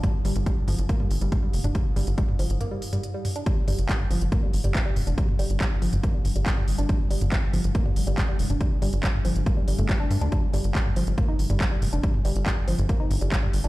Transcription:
<<
  \new Staff \with { instrumentName = "Synth arpeggio sound" } { \clef bass \time 4/4 \key g \minor \tempo 4 = 140 g16 r16 g16 r16 g16 r16 f16 r16 bes16 g16 r16 g16 r16 g16 r16 d'16 | g16 r16 g16 r16 g16 r16 f16 r16 bes16 g16 r16 g16 r16 g16 r16 d'16 | g16 r16 g16 r16 g16 r16 f16 r16 bes16 g16 r16 g16 r16 g16 r16 d'16 | g16 r16 g16 r16 g16 r16 f16 r16 bes16 g16 r16 g16 r16 g16 r16 d'16 |
g16 r16 g16 r16 g16 r16 f16 r16 bes16 g16 r16 g16 r16 g16 r16 d'16 | g16 r16 g16 r16 g16 r16 f16 r16 bes16 g16 g16 a16 g16 d'16 r16 d'16 | g16 r16 g16 r16 g16 r16 f16 r16 bes16 ees'16 r16 g16 r16 g16 r16 d'16 | g16 r16 g16 r16 g16 r16 f16 r16 bes16 ees'16 r16 g16 r16 g16 r16 d'16 | }
  \new Staff \with { instrumentName = "Synth drone" } { \clef bass \time 4/4 \key g \minor g,1~ | g,1 | g,1~ | g,1~ |
g,1~ | g,1~ | g,1~ | g,1 | }
  \new Staff \with { instrumentName = "Analog synth bass" } { \clef bass \time 4/4 \key g \minor r8 g,,16 g,,16 r8 g,,16 g,,16 r8 g,,16 g,,16 r8 f,,16 f,,16 | r8 g,,16 g,,16 r8 g,,16 g,,16 r2 | r8 g,,16 g,,16 r8 g,,16 g,,16 r8 g,,16 g,,16 r8 f,,16 f,,16 | r8 g,,16 g,,16 r8 g,,16 g,,16 r8 g,,16 g,,16 r8 g,,16 g,,16 |
r8 g,,16 g,,16 r8 g,,16 g,,16 r8 g,,16 g,,16 r8 f,,16 f,,16 | r8 g,,16 g,,16 r8 g,,16 g,,16 r8 g,,16 g,,16 r8 g,16 d,16 | r8 g,,16 g,,16 r8 g,,16 g,,16 r8 g,,16 g,,16 r8 f,,16 f,,16 | r8 g,,16 g,,16 r8 g,,16 g,,16 r8 g,,16 g,,16 r8 g,,16 g,,16 | }
  \new DrumStaff \with { instrumentName = "Drums" } \drummode { \time 4/4 <hh bd toml>8 hho16 <hh toml>16 <hh bd>8 <hho toml>16 hh16 <hh bd>16 toml16 hho16 hh16 <hh bd toml>8 hho16 <hh toml>16 | <hh bd>8 <hho toml>16 hh16 <hh bd>16 toml16 hho16 hh16 <hh toml>8 hho16 <hh toml>16 hh8 <hho toml>16 hh16 | <hh bd>8 <hho toml>16 hh16 <hc hh bd>16 toml16 hho16 hh16 <hh bd toml>8 hho16 <hh toml>16 <hc hh bd>8 <hho toml>16 hh16 | <hh bd>16 toml16 hho16 hh16 <hc hh bd toml>8 hho16 <hh toml>16 <hh bd>8 <hho toml>16 hh16 <hc hh bd>16 toml16 hho16 hh16 |
<hh bd toml>8 hho16 <hh toml>16 <hc hh bd>8 <hho toml>16 hh16 <hh bd>16 toml16 hho16 hh16 <hc hh bd toml>8 hho16 <hh toml>16 | <hh bd>8 <hho toml>16 hh16 <hc hh bd>16 toml16 hho16 hh16 <hh bd toml>8 hho16 <hh toml>16 <hc hh bd>8 <hho toml>16 hh16 | <hh bd>8 <hho toml>16 hh16 <hc hh bd>16 toml16 hho16 hh16 <hh bd toml>8 hho16 <hh toml>16 <hc hh bd>8 <hho toml>16 hh16 | <hh bd>16 toml16 hho16 hh16 <hc hh bd toml>8 hho16 <hh toml>16 <hh bd>8 <hho toml>16 hh16 <hc hh bd>16 toml16 hho16 hh16 | }
>>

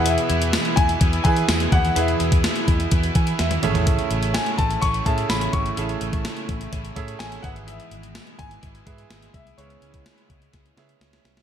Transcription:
<<
  \new Staff \with { instrumentName = "Grand piano" } { \time 4/4 \key e \major \tempo 4 = 126 e''4 r8 gis''4 gis''4 fis''8 | e''2 r2 | r4 gis''8 a''8 cis'''8 a''8 b''8 cis'''8~ | cis'''8 r2 r8 gis''8 fis''8 |
e''4 r8 gis''2 e''8 | cis''2 r2 | }
  \new Staff \with { instrumentName = "Grand piano" } { \time 4/4 \key e \major << { r1 | r2 r8 gis''8 e''4 | r1 | r1 |
r1 | r1 | } \\ { <e' gis' b'>4 r4. <e' gis' b'>4 r8 | <e' gis' b'>4. r2 <cis' e' gis' a' e''>8~ | <cis' e' gis' a' e''>4 r4. <cis' e' gis' a' e''>4 r8 | <cis' e' gis' a' e''>4. r4 <cis' e' gis' a' e''>4 <gis' b' e''>8~ |
<gis' b' e''>4 r4. <gis' b' e''>4 r8 | <cis' e' gis' b' e''>4. r4 <cis' e' gis' b' e''>4 r8 | } >> }
  \new Staff \with { instrumentName = "Grand piano" } { \clef bass \time 4/4 \key e \major e4 r2 r8 e8~ | e4 r2 r8 a,8~ | a,4 r2 r8 a,8~ | a,4 r2 r8 gis,8~ |
gis,4 r2. | cis4. r2 r8 | }
  \new Staff \with { instrumentName = "Overdriven electric guitar" } { \time 4/4 \key e \major <e b e'>8 <b e'>4. <e b e'>2 | <e b e'>8 <b e'>4. <e b e'>4. <a, e a>8~ | <a, e a>8 <e a>4. <a, e a>2 | <a, e a>8 <e a>4. <a, e a>4. <e b e'>8~ |
<e b e'>2 <e b e'>2 | <cis gis cis'>8 <gis cis'>8 <cis gis cis'>4 <cis gis cis'>2 | }
  \new Staff \with { instrumentName = "Analog synth pad" } { \clef bass \time 4/4 \key e \major << { e'1~ | e'1~ | e'1~ | e'1~ |
e'1 | e'1 | } \\ { <b, e>1~ | <b, e>2.~ <b, e>8 <cis a>8~ | <cis a>1~ | <cis a>2.~ <cis a>8 <b, e gis>8~ |
<b, e gis>1 | <cis gis b>1 | } >> }
  \new Staff \with { instrumentName = "Fingered electric bass" } { \clef bass \time 4/4 \key e \major e,8 e,8. r16 e,8 e,8 e8 e,8 dis,8 | e,8 e,8. r16 e,8 e,8 e8 e,8 a,,8~ | a,,8 a,,8. r16 a,,8 a,,8 a,8 a,,8 gis,,8 | a,,8 a,,8. r16 a,,8 a,,8 a,8 a,,8 gis,,8~ |
gis,,8 gis,,8. r16 gis,,8 gis,,8 gis,8 gis,,8 bis,,8 | cis,8 cis,8. r16 cis,8 cis,8 cis8 cis,8 bis,,8 | }
  \new DrumStaff \with { instrumentName = "Drums" } \drummode { \time 4/4 hh16 hh16 hh16 hh16 <hh sn tamb>16 hh16 <hh bd>16 hh16 <hh bd>16 hh16 <hh bd>16 hh16 <hh sn tamb>16 hh16 <hh bd>16 hh16 | hh16 hh16 hh16 <hh bd>16 <hh sn tamb>16 hh16 <hh bd>16 hh16 <hh bd>16 hh16 <hh bd>16 hh16 <hh sn>16 <hh tommh>16 <hh toml>16 <hh tomfh>16 | <hh bd>16 hh16 hh16 hh16 <hh sn tamb>16 hh16 <hh bd>16 hh16 <hh bd>16 hh16 <hh bd>16 hh16 <hh sn tamb>16 hh16 <hh bd>16 hh16 | hh16 hh16 hh16 <hh bd>16 <hh sn tamb>16 hh16 <hh bd>16 hh16 <hh bd>16 hh16 <hh bd>16 hh16 <hh sn tamb>16 hh16 <hh bd>16 hh16 |
hh16 hh16 hh16 hh16 <hh sn tamb>16 hh16 <hh bd>16 hh16 <hh bd>16 hh16 <hh bd>16 hh16 <hh sn tamb>16 hh16 <hh bd>16 hh16 | hh16 hh16 hh16 <hh bd>16 <hh sn tamb>16 hh16 <hh bd>16 hh16 <hh bd sn>16 hh16 <hh sn>16 hh16 <hh sn>16 <hh sn>16 <hh sn>16 <hh sn>16 | }
>>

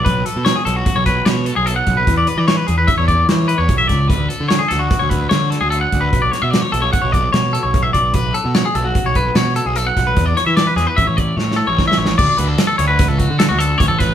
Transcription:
<<
  \new Staff \with { instrumentName = "Clean electric guitar" } { \time 5/4 \key b \dorian \tempo 4 = 148 b'8 a'8 cis''16 gis'16 a'16 fis'8 cis''16 b'8 cis''8 a'16 gis'16 a'16 fis''8 b'16~ | b'16 d''16 b'16 d''16 cis''16 b'16 gis'16 b'16 e''16 cis''16 d''8 cis''8 b'16 cis''8 e''16 d''8 | b'8 a'8 cis''16 gis'16 a'16 fis'8 cis''16 b'8 cis''8 a'16 gis'16 a'16 fis''8 b'16~ | b'16 d''16 cis''16 e''16 d''16 cis''16 a'16 cis''16 fis''16 cis''16 d''8 cis''8 a'16 cis''8 e''16 d''8 |
b'8 a'8 cis''16 gis'16 a'16 fis'8 cis''16 b'8 cis''8 a'16 gis'16 a'16 fis''8 b'16~ | b'16 d''16 cis''16 e''16 d''16 b'16 gis'16 b'16 e''16 cis''16 d''8 cis''8 a'16 cis''8 e''16 cis''8 | \key d \major d''8 b'16 a'8 a'16 cis''16 b'8 a'16 fis'8 a'16 fis'16 a'8 cis''16 a'16 b'8 | }
  \new Staff \with { instrumentName = "Picked electric bass" } { \clef bass \time 5/4 \key b \dorian b,,8 r16 b,8 r16 b,,8 r16 b,,8. b,8. b,,8. b,,8 | e,8 r16 e8 r16 e,8 r16 e,8. e8. e,16 b,,8 cis,8 | d,8 r16 d8 r16 d,8 r16 d,8. d8. d,8. d,8 | b,,8 r16 b,8 r16 b,,8 r16 b,,8. b,8. b,,8. b,,8 |
b,,8 r16 b,8 r16 b,,8 r16 b,,8. b,8. b,,8. b,,8 | e,8 r16 e8 r16 e,16 r16 a,,16 a,,8. a,8. a,,8. a,,8 | \key d \major d,16 r16 d,8 r8 d,8. cis,8 d8 d,8. d,16 a,,8. | }
  \new DrumStaff \with { instrumentName = "Drums" } \drummode { \time 5/4 <hh bd>8 hh8 <hh sn>8 hh8 <hh bd>8 <hh bd sn>8 <hh sn>8 hh8 hh8 <hh bd>8 | <hh bd>8 hh8 <hh sn>8 hh8 <hh bd sn>8 <hh bd>8 <hh sn>8 hh8 <hh bd>8 <hh bd sn>8 | <hh bd>8 hh8 <hh sn>8 <hh sn>8 <hh bd sn>8 <hh bd>8 <hh sn>8 <hh sn>8 hh8 <hh bd>8 | <hh bd>8 <hh sn>8 <hh sn>8 hh8 <hh bd>8 <hh bd>8 <hh sn>8 hh8 <hh bd>8 <hh bd>8 |
<hh bd>8 hh8 <hh sn>8 hh8 <hh bd>8 <hh bd>8 <hh sn>8 hh8 hh8 <hh bd sn>8 | <hh bd>8 <hh sn>8 <hh sn>8 <hh sn>8 <hh bd>8 <hh bd>8 \tuplet 3/2 { sn8 sn8 r8 <bd sn>8 sn8 sn8 } | <cymc bd>8 hh8 <hh sn>8 hh8 <hh bd sn>8 <hh bd>8 <hh sn>8 hh8 <hh bd>8 <hh bd sn>8 | }
>>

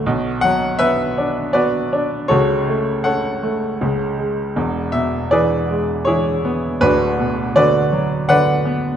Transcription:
<<
  \new Staff \with { instrumentName = "Grand piano" } { \time 3/4 \key b \dorian \tempo 4 = 80 << { r8 fis''8 e''4 d''4 | cis''4 fis''4. r8 | r8 e''8 d''4 cis''4 | b'4 d''4 fis''8. r16 | } \\ { r4 b'4 <fis' b'>4 | <fis' a'>4 <a' cis''>4. r8 | r4 <gis' b'>4 <e' gis'>4 | <d' fis'>4 <fis' b'>4 <b' d''>4 | } >> }
  \new Staff \with { instrumentName = "Grand piano" } { \clef bass \time 3/4 \key b \dorian <b,, b,>8 fis8 b8 d'8 b8 d'8 | <cis, cis>8 a8 cis'8 a8 <cis, cis>8 gis8 | <e,, e,>8 b,8 e8 gis8 e8 b8 | <d,, d,>8 b,8 d8 fis8 d8 b8 | }
>>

